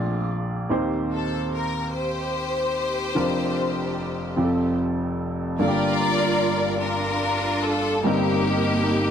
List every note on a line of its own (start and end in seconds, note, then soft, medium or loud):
0.00 0.66 A#1 medium
0.00 0.66 A#2 medium
0.00 0.70 F3 medium
0.00 0.26 A3 medium
0.00 0.26 C4 medium
0.00 0.70 D4 medium
0.00 0.30 F4 medium
0.00 0.70 F4 medium
0.00 0.70 G#4 medium
0.00 0.70 D5 medium
0.69 3.11 D#2 medium
0.69 3.11 D#3 medium
0.69 3.11 A#3 medium
0.69 3.10 C4 medium
0.69 3.11 D#4 medium
0.69 3.11 G4 medium
0.69 3.11 C5 medium
1.13 1.50 A4 medium
1.54 1.91 A#4 medium
1.94 4.75 G4 medium
1.94 4.79 C5 medium
3.15 4.33 F1 medium
3.15 4.34 F2 medium
3.15 4.37 D4 medium
3.15 4.36 F4 medium
3.15 4.38 A#4 medium
4.36 5.56 F1 medium
4.36 5.55 F2 medium
4.36 5.59 C4 medium
4.36 5.59 F4 medium
4.36 4.44 G4 medium
4.44 5.59 A4 medium
5.59 8.00 G1 medium
5.59 8.00 G2 medium
5.59 7.99 G3 medium
5.59 7.99 A#3 medium
5.59 8.00 D4 medium
5.59 6.78 F4 medium
5.59 8.00 F4 medium
5.59 5.66 A4 medium
5.59 6.78 A#4 medium
5.59 6.77 D5 loud
5.68 8.04 G4 medium
6.81 7.99 D4 medium
6.81 8.00 F4 medium
6.81 7.63 A#4 medium
7.63 8.03 A4 medium
8.04 9.11 G1 medium
8.04 9.11 G2 medium
8.04 9.11 G3 medium
8.04 9.11 A#3 medium
8.04 9.11 C4 medium
8.04 9.11 D#4 medium
8.04 9.11 G4 medium
8.04 9.11 A#4 medium